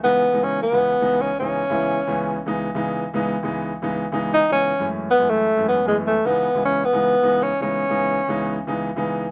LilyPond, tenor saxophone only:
\new Staff \with { instrumentName = "Tenor saxophone" } { \time 4/4 \key cis \minor \tempo 4 = 155 b4 cis'8 b4. cis'8 cis'8~ | cis'2~ cis'8 r4. | r2. dis'8 cis'8~ | cis'8 r8 b8 a4 b8 gis8 a8 |
b4 cis'8 b4. cis'8 cis'8~ | cis'2~ cis'8 r4. | }